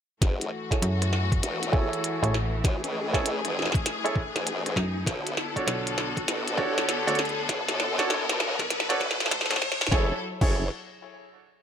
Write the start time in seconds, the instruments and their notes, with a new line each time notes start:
0.22 wobble bass F#1, string section E3 A3 F#4, kick, snare, closed hi-hat, riser
0.41 closed hi-hat
0.71 grand piano E4 G#4 A4 C#5, kick, snare, closed hi-hat
0.82 fm bass F#2, closed hi-hat
1.02 cross-stick, closed hi-hat
1.13 snare
1.32 kick, closed hi-hat
1.43 wobble bass E1, closed hi-hat
1.63 closed hi-hat
1.72 grand piano E4 G#4 A4 C#5, kick
1.93 closed hi-hat
2.04 closed hi-hat
2.22 fm bass A1, grand piano E4 G#4 A4 C#5, closed hi-hat
2.34 snare
2.64 wobble bass F#2, string section G#4, kick, snare, closed hi-hat
2.84 wobble bass C#2, closed hi-hat
3.13 grand piano E4 G#4 A4 C#5, kick, snare, closed hi-hat
3.26 closed hi-hat
3.45 wobble bass F#1, cross-stick, closed hi-hat
3.59 snare
3.62 snare
3.66 snare
3.72 kick, snare, closed hi-hat
3.86 snare, closed hi-hat
4.04 grand piano E4 G#4 A4 C#5, closed hi-hat
4.16 kick, cross-stick
4.36 wobble bass F#1, snare, closed hi-hat
4.47 closed hi-hat
4.66 cross-stick, closed hi-hat
4.76 fm bass F#2, kick, snare
5.06 wobble bass B1, string section D3 B3 A4, kick, snare, closed hi-hat
5.27 closed hi-hat
5.37 snare
5.56 grand piano D4 F#4 A4 C#5, kick, closed hi-hat
5.67 fm bass B1, snare, closed hi-hat
5.87 closed hi-hat
5.98 snare
6.17 kick, closed hi-hat
6.28 wobble bass A1, snare, closed hi-hat
6.48 closed hi-hat
6.57 grand piano D4 F#4 A4 C#5, kick
6.78 snare, closed hi-hat
6.89 snare, closed hi-hat
7.07 fm bass D2, grand piano D4 F#4 A4 C#5, closed hi-hat
7.15 snare, closed hi-hat
7.19 closed hi-hat
7.25 closed hi-hat
7.29 closed hi-hat
7.49 wobble bass B1, kick, snare, closed hi-hat
7.69 wobble bass F#2, snare, closed hi-hat
7.80 snare
7.98 grand piano D4 F#4 A4 C#5, kick, snare, closed hi-hat
8.10 snare
8.29 wobble bass B1, snare, closed hi-hat
8.40 snare
8.59 fm bass B1, kick, snare, closed hi-hat
8.70 snare, closed hi-hat
8.80 snare
8.89 grand piano D4 F#4 A4 C#5, snare, closed hi-hat
9.00 wobble bass B1, kick, snare
9.11 snare
9.20 snare, closed hi-hat
9.26 snare
9.31 fm bass A1, snare, closed hi-hat
9.41 snare
9.46 snare
9.50 fm bass B1, snare, closed hi-hat
9.53 snare
9.56 snare
9.61 kick, snare
9.72 snare
9.81 snare
9.87 snare
9.91 wobble bass F#1, string section F#3 E4 A4, grand piano E4 G#4 A4 C#5, kick, snare
10.41 wobble bass F#1, grand piano E4 G#4 A4 C#5, kick, crash